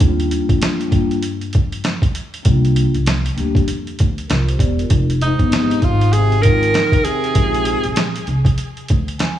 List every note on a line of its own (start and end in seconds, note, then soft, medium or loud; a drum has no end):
0.00 0.39 D#2 loud
0.00 0.87 G3 medium
0.00 0.87 A#3 medium
0.00 0.88 D4 medium
0.00 0.88 F4 medium
0.00 kick loud
0.00 closed hi-hat medium
0.20 closed hi-hat soft
0.31 closed hi-hat medium
0.49 0.92 F2 medium
0.49 kick medium
0.49 closed hi-hat soft
0.62 snare loud
0.62 closed hi-hat medium
0.81 closed hi-hat medium
0.89 1.80 G2 medium
0.89 1.14 G3 medium
0.89 1.15 A#3 medium
0.89 1.16 D4 medium
0.89 1.16 F4 medium
0.89 kick medium
0.89 closed hi-hat medium
1.11 closed hi-hat soft
1.23 closed hi-hat medium
1.41 closed hi-hat soft
1.53 kick medium
1.53 closed hi-hat medium
1.72 closed hi-hat medium
1.84 snare medium
1.84 closed hi-hat medium
2.02 kick medium
2.02 closed hi-hat soft
2.15 closed hi-hat medium
2.34 closed hi-hat medium
2.43 2.84 C2 loud
2.43 2.90 G3 medium
2.43 2.91 A#3 medium
2.43 2.91 D4 medium
2.43 2.92 F4 medium
2.43 kick loud
2.43 closed hi-hat medium
2.65 closed hi-hat medium
2.76 closed hi-hat medium
2.94 3.28 C2 medium
2.94 closed hi-hat soft
3.06 snare loud
3.06 closed hi-hat medium
3.26 closed hi-hat medium
3.35 3.61 D2 medium
3.35 3.60 G3 medium
3.35 3.61 A#3 medium
3.35 3.61 D4 medium
3.35 3.62 G4 medium
3.35 closed hi-hat medium
3.55 kick medium
3.55 closed hi-hat soft
3.67 3.91 F2 medium
3.67 closed hi-hat medium
3.87 closed hi-hat soft
3.99 4.23 D2 medium
3.99 kick medium
3.99 closed hi-hat medium
4.18 closed hi-hat soft
4.28 4.53 C2 medium
4.28 4.47 F4 medium
4.28 4.47 A#4 medium
4.28 snare medium
4.28 closed hi-hat medium
4.48 4.58 G4 medium
4.48 4.59 C5 medium
4.48 closed hi-hat soft
4.59 4.83 E1 medium
4.59 4.78 G4 medium
4.59 4.78 D5 medium
4.59 kick medium
4.59 closed hi-hat medium
4.78 5.08 F4 soft
4.78 5.08 A#4 medium
4.78 closed hi-hat soft
4.90 5.29 F1 loud
4.90 kick loud
4.90 closed hi-hat medium
5.10 closed hi-hat medium
5.21 5.85 G#2 medium
5.21 5.86 D#4 medium
5.21 closed hi-hat medium
5.39 5.72 G1 medium
5.39 kick medium
5.39 closed hi-hat soft
5.50 5.74 G#3 medium
5.50 5.75 C4 soft
5.50 5.76 D#4 medium
5.50 5.76 G4 medium
5.50 snare loud
5.50 closed hi-hat medium
5.71 closed hi-hat medium
5.82 6.70 G#1 medium
5.82 6.16 G#2 medium
5.82 6.14 F4 medium
5.82 kick medium
5.82 closed hi-hat medium
6.01 closed hi-hat soft
6.13 6.45 C3 medium
6.13 6.44 G#4 loud
6.13 closed hi-hat medium
6.32 closed hi-hat soft
6.41 7.07 D#3 medium
6.41 6.66 G#3 medium
6.41 6.66 C4 medium
6.41 6.67 D#4 medium
6.41 6.67 F4 medium
6.41 7.06 A#4 loud
6.41 closed hi-hat medium
6.45 kick medium
6.63 closed hi-hat soft
6.74 snare medium
6.74 closed hi-hat medium
6.92 kick medium
6.92 closed hi-hat soft
7.04 8.27 C3 medium
7.04 8.27 G#4 loud
7.04 closed hi-hat medium
7.24 closed hi-hat soft
7.33 7.74 A#1 medium
7.33 7.73 G#3 medium
7.33 7.73 C4 medium
7.33 7.73 D#4 medium
7.33 7.74 F4 medium
7.33 kick loud
7.33 closed hi-hat medium
7.54 closed hi-hat soft
7.65 closed hi-hat medium
7.84 8.17 A#1 medium
7.84 closed hi-hat soft
7.96 snare loud
7.96 closed hi-hat loud
8.16 closed hi-hat medium
8.27 8.51 C2 medium
8.27 closed hi-hat medium
8.45 kick medium
8.45 closed hi-hat soft
8.58 closed hi-hat medium
8.77 closed hi-hat soft
8.88 9.28 D2 medium
8.88 kick medium
8.88 closed hi-hat medium
9.08 closed hi-hat soft
9.18 9.38 G#5 medium
9.18 snare medium
9.18 closed hi-hat medium